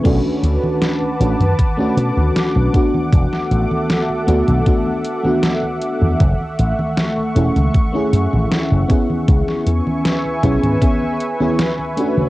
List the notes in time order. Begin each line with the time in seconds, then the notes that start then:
0.04 B1 A3 C#4 D4 F#4 B4 F#5 A5 D6, kick, closed hi-hat, crash, high conga
0.25 high conga
0.43 D2, closed hi-hat
0.64 high conga
0.82 snare, closed hi-hat, high conga
1.02 high conga
1.20 A1 A3 C#4 D4 F#4, closed hi-hat
1.40 F#2, closed hi-hat, high conga
1.59 kick, closed hi-hat, high conga
1.77 A3 C#4 D4 F#4, high conga
1.97 B2, closed hi-hat
2.17 D2, high conga
2.36 snare, closed hi-hat, high conga
2.56 B1, high conga
2.73 A3 B3 D4 F#4 A4 E5, kick, closed hi-hat
2.94 high conga
3.12 E1, kick, closed hi-hat, high conga
3.33 snare, high conga
3.51 A1, closed hi-hat
3.71 high conga
3.90 snare, closed hi-hat, high conga
4.10 high conga
4.27 D2 A3 B3 D4 F#4, closed hi-hat
4.48 B1, closed hi-hat, high conga
4.66 A3 B3 D4 F#4, kick, closed hi-hat, high conga
4.86 high conga
5.05 closed hi-hat
5.23 A3 B3 D4 F#4, high conga
5.43 snare, closed hi-hat, high conga
5.63 high conga
5.82 closed hi-hat
6.02 E2, high conga
6.20 F#1 A3 C#6, kick, closed hi-hat, high conga
6.40 high conga
6.59 A1, closed hi-hat
6.79 high conga
6.97 snare, closed hi-hat, high conga
7.18 high conga
7.35 E1 A3 C#4 E4 G#4, closed hi-hat
7.56 C#2, closed hi-hat, high conga
7.74 kick, closed hi-hat, high conga
7.93 A3 C#4 E4 G#4, high conga
8.13 F#2, closed hi-hat
8.33 A1, high conga
8.51 snare, closed hi-hat, high conga
8.71 F#1, high conga
8.88 B3 C#4 E4 G#4, kick, closed hi-hat
9.10 high conga
9.28 C#2 B4 E5 G#5 C#6, kick, closed hi-hat, high conga
9.48 snare, high conga
9.66 E2, closed hi-hat
9.87 high conga
10.05 snare, closed hi-hat, high conga
10.25 high conga
10.43 B1 B3 C#4 E4 G#4, kick, closed hi-hat
10.63 G#2, closed hi-hat, high conga
10.82 B3 C#4 E4 G#4, kick, closed hi-hat, high conga
11.02 high conga
11.21 closed hi-hat
11.40 B3 C#4 E4 G#4, high conga
11.59 snare, closed hi-hat, high conga
11.79 high conga
11.96 A3 C#4 D4 F#4, closed hi-hat
12.17 C#3, high conga